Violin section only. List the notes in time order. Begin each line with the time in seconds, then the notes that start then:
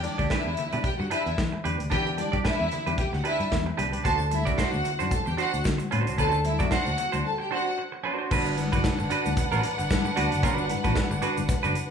0.03 D4 D5
0.29 E4 E5
0.83 G4 G5
0.98 F#4 F#5
1.10 E4 E5
1.91 G4 G5
2.18 D4 D5
2.45 E4 E5
2.99 G4 G5
3.14 F#4 F#5
3.25 E4 E5
4.05 A4 A5
4.32 E4 E5
4.58 F#4 F#5
5.11 A4 A5
5.26 G4 G5
5.38 F#4 F#5
6.18 A4 A5
6.45 E4 E5
6.72 F#4 F#5
7.26 A4 A5
7.40 G4 G5
7.52 F#4 F#5
8.31 D4 B4 F#5